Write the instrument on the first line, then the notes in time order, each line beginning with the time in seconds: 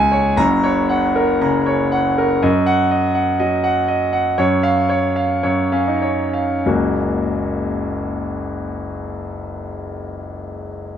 grand piano
Already playing: C#2 G#5
0.12 C#5
0.36 F#1 F#2 A#5
0.64 C#5
0.89 F#5
1.16 A#4
1.41 C#3 A#5
1.66 C#5
1.92 F#5
2.18 A#4
2.42 F#2 D#5
2.66 F#5
2.91 D#5
3.15 F#5
3.39 F#3 D#5
3.64 F#5
3.88 D#5
4.13 F#5
4.38 F#2 C#5
4.63 F5
4.89 C#5
5.16 F5
5.43 F#2 C#5
5.72 C#4 F5
5.87 D#4
6.02 C#5
6.33 F5
6.66 F#1 C#2 F#3 A#3 C#4 F#4